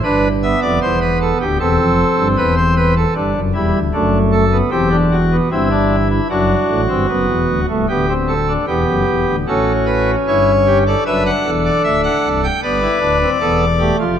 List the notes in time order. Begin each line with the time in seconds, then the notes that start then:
0.04 G1 G2 D4 B4
0.43 B3 E5
0.62 F1 F2 D5
0.82 E1 E2 C5
1.01 B4
1.21 A4
1.41 D1 D2 G4
1.60 E1 E2 C4 A4
1.79 F1 F2
2.18 G1 G2
2.37 E1 E2 B4
2.57 C5
2.77 B4
2.97 A4
3.15 G1 G2 D4
3.35 F#1 F#2
3.54 E1 E2 G3 E4
3.73 D1 D2
3.94 F#1 F#2 A3 D4
4.32 A4
4.52 B3
4.71 E1 E2 C4 G4
4.91 D4
5.12 F#4
5.32 B3
5.51 G1 G2 C4 E4
5.71 D4
6.10 E4
6.30 F#1 F#2 D4 F#4
6.69 A1 A2
6.89 G1 G2 C4
7.09 F#1 F#2 B3
7.28 E1 E2
7.48 D1 D2
7.69 C1 C2 A3
7.89 D1 D2 B3 G4
8.09 C4
8.28 A4
8.49 D4
8.67 E1 E2 B3 G4
8.87 F#1 F#2
9.07 E1 E2
9.27 D1 D2
9.47 A1 A2 C#4 F#4 A4
9.86 B4
10.27 G1 G2 E4 C#5
10.67 G4
10.87 A4 D5
11.06 F#1 F#2 D4 B4 E5
11.26 F#5
11.45 E1 E2 A4
11.65 D5
11.84 D1 D2 E5
12.04 F#5
12.24 C1 C2
12.44 G5
12.63 G1 G2 B3 B4 D5
12.82 E4
13.00 D1 D2 D4
13.22 C4
13.41 E1 E2 B3 A4
13.79 A3 G4
13.99 F1 F2 F4